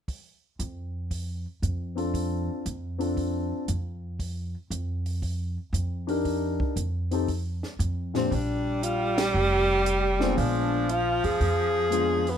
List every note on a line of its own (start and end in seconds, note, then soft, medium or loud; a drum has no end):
0.08 kick soft
0.08 open hi-hat soft
0.59 1.45 F2 medium
0.59 closed hi-hat soft
1.11 kick soft
1.11 open hi-hat soft
1.62 2.48 F2 medium
1.62 closed hi-hat soft
1.95 2.61 C4 soft
1.95 2.61 D4 soft
1.95 2.61 F4 soft
1.95 2.62 A4 medium
1.95 open hi-hat soft
2.14 kick soft
2.14 open hi-hat soft
2.66 3.51 F2 medium
2.66 closed hi-hat soft
2.98 3.64 C4 medium
2.98 3.64 D4 soft
2.98 3.64 F4 soft
2.98 3.64 A4 medium
2.98 open hi-hat soft
3.17 kick soft
3.17 open hi-hat soft
3.68 4.54 F2 medium
3.68 closed hi-hat soft
4.19 kick soft
4.19 open hi-hat soft
4.70 5.56 F2 medium
4.70 closed hi-hat soft
5.06 open hi-hat soft
5.22 kick soft
5.22 open hi-hat soft
5.73 6.59 F2 medium
5.73 closed hi-hat soft
6.07 6.73 D4 medium
6.07 6.73 D#4 medium
6.07 6.73 G4 medium
6.07 6.74 A#4 medium
6.07 open hi-hat soft
6.25 kick soft
6.25 open hi-hat soft
6.60 kick soft
6.76 7.62 F2 medium
6.76 closed hi-hat soft
7.11 7.26 C4 medium
7.11 7.27 D#4 medium
7.11 7.27 G4 soft
7.11 7.27 A4 medium
7.11 open hi-hat soft
7.28 kick soft
7.28 open hi-hat soft
7.63 snare soft
7.79 8.27 F2 medium
7.79 closed hi-hat soft
8.14 8.29 A#2 medium
8.14 8.30 C4 soft
8.14 8.35 C4 medium
8.14 8.30 D4 soft
8.14 8.30 F4 soft
8.14 8.30 G4 medium
8.14 snare soft
8.14 open hi-hat soft
8.31 9.30 A#1 medium
8.31 10.39 G3 loud
8.31 8.85 D4 medium
8.31 kick soft
8.31 open hi-hat soft
8.83 9.20 F4 medium
8.83 closed hi-hat soft
9.18 10.21 G4 medium
9.18 snare medium
9.18 ride medium
9.34 10.33 F1 medium
9.86 closed hi-hat soft
10.19 10.85 G#3 medium
10.19 10.85 B3 medium
10.19 10.39 C4 medium
10.19 10.85 D4 medium
10.19 10.85 F4 medium
10.19 snare soft
10.37 11.20 A#1 medium
10.37 12.38 F3 loud
10.37 10.92 D4 medium
10.37 kick soft
10.37 open hi-hat soft
10.89 11.26 F4 medium
10.89 closed hi-hat soft
11.24 11.39 F2 medium
11.24 12.31 G#4 loud
11.24 open hi-hat soft
11.40 12.38 F2 medium
11.40 kick soft
11.40 open hi-hat soft
11.90 12.22 G#3 soft
11.90 12.23 B3 soft
11.90 12.23 D4 soft
11.90 12.23 F4 medium
11.90 closed hi-hat soft
12.27 12.38 B3 medium
12.27 open hi-hat soft